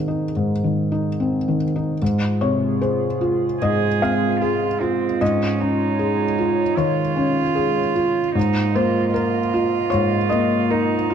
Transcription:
0.00 0.31 G#2 soft
0.00 0.64 D#3 soft
0.00 1.20 C4 soft
0.00 0.08 D#4 soft
0.00 1.56 G#4 soft
0.00 2.04 A#4 soft
0.08 0.52 D#4 soft
0.36 1.98 G#2 soft
0.64 1.08 D#3 soft
0.92 1.36 D#4 soft
1.20 1.64 C4 soft
1.48 1.91 D#3 soft
1.76 2.02 D#4 soft
2.02 3.58 G#2 soft
2.02 8.32 G#3 soft
2.02 8.33 F4 soft
2.02 5.18 G#4 soft
2.41 3.06 C3 soft
2.41 2.79 C#5 soft
2.81 3.46 G#4 soft
2.81 3.58 C5 soft
3.21 3.86 F4 soft
3.62 5.17 G#2 soft
3.62 4.38 G#4 soft
3.62 3.99 D#5 medium
4.02 4.66 C4 soft
4.02 5.17 F5 soft
4.41 4.82 F4 soft
4.41 5.05 G#4 soft
4.81 5.22 C4 soft
4.81 5.21 F4 soft
5.21 6.74 G#2 soft
5.21 5.62 C#4 soft
5.21 8.36 C#5 soft
5.21 6.74 D#5 medium
5.61 6.23 C#4 soft
5.61 6.78 D#4 soft
5.99 6.62 G#4 soft
6.38 7.01 F4 soft
6.77 7.40 D#3 soft
6.77 8.35 F4 soft
6.77 7.92 C#5 soft
7.16 7.80 C#4 soft
7.55 8.20 G#4 soft
7.95 8.36 F4 soft
8.35 9.88 G#2 soft
8.35 11.14 A#3 soft
8.35 8.77 D#4 soft
8.35 11.14 F4 soft
8.35 11.14 D#5 soft
8.75 9.38 A#3 soft
8.75 9.14 F4 soft
8.75 9.12 C5 medium
9.14 10.72 F4 medium
9.14 9.88 A#4 soft
9.54 10.16 F4 soft
9.90 11.14 G#2 soft
9.90 10.28 C#5 medium
10.29 10.95 A#3 soft
10.29 11.14 D#5 soft
10.71 11.14 D#4 soft
10.71 11.14 A#4 soft
11.10 11.14 F4 soft

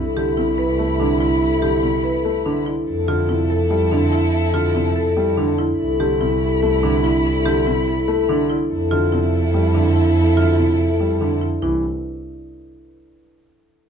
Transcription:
0.00 2.75 C2 medium
0.00 2.62 E4 medium
0.00 0.57 A4 medium
0.00 1.19 D5 medium
0.00 3.64 E5 medium
0.00 2.62 B5 medium
0.17 0.44 D3 medium
0.17 0.44 G4 medium
0.37 0.64 C3 medium
0.37 0.64 E4 medium
0.37 0.98 C5 medium
0.58 1.40 A4 medium
0.58 0.85 B4 medium
0.79 1.06 A3 medium
0.99 1.27 D3 medium
0.99 1.27 D4 medium
0.99 1.82 C5 medium
1.20 1.48 E4 medium
1.20 2.65 D5 medium
1.41 2.02 A4 medium
1.62 1.89 D3 medium
1.62 1.89 G4 medium
1.83 2.10 C3 medium
1.83 2.10 E4 medium
1.83 2.44 C5 medium
2.04 2.86 A4 medium
2.04 2.31 B4 medium
2.25 2.52 A3 medium
2.45 2.73 D3 medium
2.45 2.73 D4 medium
2.45 5.80 C5 medium
2.66 2.93 E4 medium
2.66 2.89 D5 medium
2.87 5.67 F2 medium
2.87 5.54 E4 medium
2.87 3.48 A4 medium
2.87 5.54 A4 medium
3.08 3.35 D3 medium
3.08 3.35 F4 medium
3.28 3.56 C3 medium
3.28 3.56 E4 medium
3.28 3.90 D5 medium
3.49 4.32 A4 medium
3.49 3.77 A4 medium
3.71 3.98 G3 medium
3.92 4.19 D3 medium
3.92 4.19 D4 medium
4.12 4.39 E4 medium
4.12 5.57 E5 medium
4.33 4.95 A4 medium
4.54 4.81 D3 medium
4.54 4.81 F4 medium
4.75 5.02 C3 medium
4.75 5.02 E4 medium
4.75 5.37 D5 medium
4.96 5.23 A4 medium
4.96 5.78 A4 medium
5.17 5.44 G3 medium
5.37 5.64 D3 medium
5.37 5.64 D4 medium
5.37 7.03 D5 medium
5.58 5.85 E4 medium
5.58 9.48 E5 medium
5.79 8.58 C2 medium
5.79 8.46 E4 medium
5.79 6.40 A4 medium
5.79 8.46 B5 medium
6.00 6.27 D3 medium
6.00 6.27 G4 medium
6.21 6.48 C3 medium
6.21 6.48 E4 medium
6.21 6.82 C5 medium
6.42 7.24 A4 medium
6.63 6.89 A3 medium
6.83 7.10 D3 medium
6.83 7.10 D4 medium
6.83 7.65 C5 medium
7.04 7.31 E4 medium
7.04 8.48 D5 medium
7.25 7.86 A4 medium
7.46 7.73 D3 medium
7.46 7.73 G4 medium
7.66 7.94 C3 medium
7.66 7.93 E4 medium
7.66 8.28 C5 medium
7.87 8.69 A4 medium
8.08 8.35 A3 medium
8.29 8.56 D3 medium
8.29 8.56 D4 medium
8.50 8.77 E4 medium
8.50 8.72 D5 medium
8.70 11.50 F2 medium
8.70 11.37 E4 medium
8.70 11.38 E4 medium
8.70 9.32 A4 medium
8.70 11.38 A4 medium
8.91 9.19 D3 medium
8.91 9.18 F4 medium
9.12 9.39 C3 medium
9.12 9.39 E4 medium
9.12 9.74 D5 medium
9.33 10.15 A4 medium
9.54 9.81 G3 medium
9.75 10.02 D3 medium
9.75 10.02 D4 medium
9.75 10.57 D5 medium
9.95 10.23 E4 medium
9.95 11.40 E5 medium
10.16 10.78 A4 medium
10.37 10.64 D3 medium
10.37 10.64 F4 medium
10.58 10.85 C3 medium
10.58 10.85 E4 medium
10.58 11.19 D5 medium
10.79 11.64 A4 medium
11.00 11.27 G3 medium
11.21 11.48 D3 medium
11.21 11.48 D4 medium
11.21 13.10 D5 medium
11.41 11.61 E4 medium
11.41 13.10 E5 medium
11.62 11.82 C2 medium
11.62 11.82 E3 medium
11.62 11.82 E4 medium
11.62 11.82 B4 medium

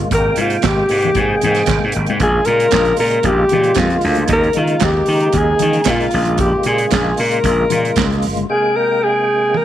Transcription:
0.00 8.46 G#3 medium
0.00 8.46 A#3 medium
0.11 0.30 G#1 loud
0.11 2.19 C3 medium
0.11 0.37 A#4 loud
0.11 2.19 G5 medium
0.11 kick loud
0.11 closed hi-hat medium
0.11 muted conga medium
0.36 0.56 G#2 medium
0.36 closed hi-hat medium
0.36 muted conga medium
0.41 0.68 F4 medium
0.50 closed hi-hat soft
0.62 0.83 G#1 medium
0.62 kick medium
0.62 snare loud
0.62 clap medium
0.62 closed hi-hat medium
0.62 high conga medium
0.66 1.22 G4 medium
0.89 1.09 G#2 medium
0.89 open hi-hat medium
1.02 closed hi-hat soft
1.02 low conga medium
1.15 1.35 G#2 medium
1.15 kick loud
1.15 closed hi-hat medium
1.15 muted conga medium
1.20 1.96 G#4 medium
1.41 1.62 G#2 medium
1.41 closed hi-hat medium
1.41 muted conga soft
1.41 low conga medium
1.55 snare soft
1.55 closed hi-hat soft
1.66 1.78 G#1 medium
1.66 kick loud
1.66 snare medium
1.66 clap medium
1.66 closed hi-hat medium
1.70 high conga medium
1.84 1.92 G#2 medium
1.92 2.05 G#1 medium
1.92 closed hi-hat medium
2.06 2.18 G#2 medium
2.06 closed hi-hat soft
2.06 high conga medium
2.19 2.39 A#1 loud
2.19 4.27 C#3 medium
2.19 4.28 F4 medium
2.19 kick loud
2.19 closed hi-hat medium
2.19 muted conga medium
2.23 2.48 G#4 loud
2.45 2.66 A#2 medium
2.45 2.99 A#4 loud
2.45 closed hi-hat medium
2.45 muted conga medium
2.60 closed hi-hat soft
2.71 2.92 A#1 medium
2.71 kick loud
2.71 snare medium
2.71 clap medium
2.71 closed hi-hat medium
2.71 high conga medium
2.85 closed hi-hat soft
2.97 3.18 A#2 medium
2.97 3.28 A#4 medium
2.97 open hi-hat medium
3.11 closed hi-hat soft
3.23 3.43 A#1 medium
3.23 3.80 G4 medium
3.23 kick loud
3.23 closed hi-hat medium
3.23 muted conga medium
3.49 3.71 A#2 medium
3.49 closed hi-hat medium
3.49 low conga medium
3.63 closed hi-hat soft
3.74 3.96 F2 medium
3.74 kick medium
3.74 snare medium
3.74 clap medium
3.74 closed hi-hat medium
3.74 high conga medium
3.79 4.18 F4 medium
3.90 closed hi-hat soft
4.01 4.23 D2 medium
4.01 open hi-hat medium
4.15 closed hi-hat soft
4.15 high conga medium
4.28 4.48 D#2 loud
4.28 6.11 C#3 medium
4.28 6.11 D#4 medium
4.28 kick loud
4.28 closed hi-hat medium
4.28 muted conga medium
4.33 4.61 A#4 loud
4.43 closed hi-hat soft
4.53 4.75 D#3 medium
4.53 closed hi-hat medium
4.53 muted conga medium
4.59 4.86 F4 medium
4.67 closed hi-hat soft
4.80 5.01 D#2 loud
4.80 kick medium
4.80 snare loud
4.80 clap medium
4.80 closed hi-hat medium
4.80 high conga medium
4.85 5.39 G4 loud
5.06 5.27 D#3 medium
5.06 open hi-hat medium
5.20 closed hi-hat soft
5.32 5.53 D#2 loud
5.32 kick medium
5.32 closed hi-hat medium
5.32 muted conga medium
5.37 5.92 G#4 medium
5.59 5.80 D#3 medium
5.59 closed hi-hat medium
5.59 low conga medium
5.73 closed hi-hat soft
5.84 6.05 A#2 medium
5.84 kick loud
5.84 snare loud
5.84 clap medium
5.84 closed hi-hat medium
5.84 high conga medium
5.90 6.40 F4 medium
6.00 closed hi-hat soft
6.11 6.51 A#1 medium
6.11 8.47 C#3 medium
6.11 8.47 F4 medium
6.11 open hi-hat medium
6.25 closed hi-hat soft
6.25 high conga medium
6.38 6.69 G4 medium
6.38 kick loud
6.38 closed hi-hat medium
6.38 muted conga medium
6.63 6.85 A#2 loud
6.63 closed hi-hat medium
6.63 muted conga medium
6.68 7.21 G#4 medium
6.78 closed hi-hat soft
6.91 7.11 A#1 medium
6.91 kick medium
6.91 snare loud
6.91 clap medium
6.91 closed hi-hat medium
6.91 high conga medium
7.17 7.38 A#2 loud
7.17 8.24 A#4 medium
7.17 open hi-hat medium
7.31 closed hi-hat soft
7.44 7.63 A#1 loud
7.44 kick medium
7.44 closed hi-hat medium
7.44 muted conga medium
7.70 7.90 A#2 medium
7.70 closed hi-hat medium
7.70 muted conga soft
7.70 low conga medium
7.85 closed hi-hat soft
7.96 8.26 C#2 medium
7.96 kick medium
7.96 snare medium
7.96 clap medium
7.96 closed hi-hat medium
7.96 high conga medium
8.12 closed hi-hat soft
8.22 8.43 G1 medium
8.22 open hi-hat medium
8.36 closed hi-hat soft
8.36 high conga medium
8.49 9.65 C3 medium
8.49 9.65 G#3 medium
8.49 9.65 A#3 medium
8.49 8.78 G#4 medium
8.49 9.65 G5 medium
8.76 9.05 A#4 medium
9.04 9.59 G#4 loud
9.54 9.65 A#4 medium
9.54 high tom soft

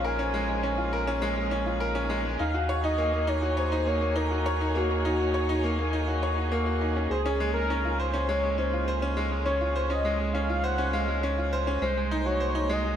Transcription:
0.00 2.37 A#1 medium
0.00 0.34 G#3 loud
0.00 11.80 A#3 medium
0.00 0.19 C#4 loud
0.00 12.96 D#4 medium
0.00 0.78 F4 medium
0.00 12.96 G#4 medium
0.00 0.05 A#4 loud
0.00 2.40 C5 medium
0.05 0.13 A#4 loud
0.05 0.93 G#5 loud
0.19 0.33 C#4 loud
0.34 0.47 G#3 loud
0.49 0.57 G#3 medium
0.63 0.77 C#4 medium
0.78 0.86 F4 medium
0.93 1.01 A#4 loud
1.07 1.21 C#4 loud
1.22 1.35 G#3 loud
1.37 1.45 G#3 medium
1.51 1.65 C#4 loud
1.66 1.74 F4 medium
1.80 1.89 A#4 loud
1.95 2.09 C#4 loud
2.10 2.23 G#3 loud
2.25 2.33 G#3 medium
2.39 7.08 D#2 medium
2.39 2.54 D#4 medium
2.39 2.81 F5 loud
2.54 2.63 F#4 medium
2.69 2.78 C#5 loud
2.84 2.98 D#4 loud
2.84 3.30 D#5 loud
2.98 3.11 A#3 loud
3.13 3.22 A#3 medium
3.27 3.42 D#4 loud
3.27 3.59 C#5 loud
3.42 3.51 F#4 medium
3.42 7.10 C#5 medium
3.57 3.89 C5 loud
3.57 3.66 C#5 loud
3.72 3.86 D#4 loud
3.86 4.00 A#3 medium
3.86 4.18 C#5 loud
4.01 4.10 A#3 medium
4.16 4.30 D#4 loud
4.16 4.77 A#4 loud
4.31 4.39 F#4 medium
4.46 4.54 C#5 loud
4.61 4.75 D#4 medium
4.75 4.89 A#3 loud
4.75 5.64 F#4 medium
4.90 4.98 A#3 medium
5.05 5.19 D#4 loud
5.20 5.28 F#4 medium
5.34 5.42 C#5 medium
5.49 5.63 D#4 loud
5.64 5.77 A#3 loud
5.79 5.87 A#3 medium
5.93 6.07 D#4 loud
6.08 6.16 F#4 medium
6.23 6.36 C#5 loud
6.38 6.51 F#4 medium
6.52 6.60 A#3 loud
6.66 6.80 F#4 medium
6.81 6.95 D#4 medium
6.96 7.04 C#4 medium
7.10 11.78 C#2 medium
7.10 7.51 G#4 medium
7.10 7.19 C5 medium
7.26 7.39 C#4 loud
7.40 7.54 G#3 medium
7.54 7.63 G#3 medium
7.54 8.00 A#4 loud
7.70 7.84 C#4 loud
7.85 7.93 F4 medium
7.99 8.30 C5 loud
7.99 8.07 C5 loud
8.14 8.27 C#4 loud
8.28 8.42 G#3 loud
8.28 8.60 C#5 loud
8.44 8.52 G#3 medium
8.58 8.72 C#4 medium
8.58 8.87 C5 loud
8.73 8.81 F4 medium
8.88 8.96 C5 loud
9.02 9.16 C#4 loud
9.17 9.30 G#3 loud
9.31 9.40 G#3 medium
9.45 9.60 C#4 loud
9.45 9.91 C#5 medium
9.61 9.69 F4 medium
9.76 9.84 C5 loud
9.90 10.04 C#4 loud
9.90 10.33 D#5 medium
10.05 10.18 G#3 loud
10.20 10.28 G#3 medium
10.33 10.48 C#4 loud
10.33 10.65 F5 loud
10.49 10.57 F4 medium
10.64 10.72 C5 loud
10.64 10.95 F#5 loud
10.78 10.92 C#4 loud
10.93 11.07 G#3 loud
10.93 11.22 F5 loud
11.08 11.16 G#3 medium
11.23 11.37 C#4 loud
11.38 11.46 F4 medium
11.53 11.61 C5 loud
11.67 11.81 C#4 loud
11.81 12.96 C2 medium
11.81 11.95 G#3 medium
11.81 12.96 A#3 medium
11.81 12.28 C5 loud
11.97 12.05 G#3 medium
12.11 12.25 D#4 loud
12.26 12.34 F#4 medium
12.26 12.73 C#5 loud
12.40 12.48 C5 loud
12.55 12.69 D#4 loud
12.69 12.83 G#3 loud
12.69 12.96 D#5 loud
12.85 12.93 G#3 medium

